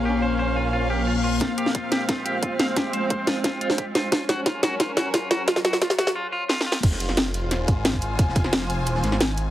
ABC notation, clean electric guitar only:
X:1
M:4/4
L:1/8
Q:1/4=177
K:Fm
V:1 name="Clean electric guitar"
G c c F F G F F | F G F G F G F f | G c c F F F G F | F _G F G F G F G |
F _G F G F F F F | z8 | z8 |]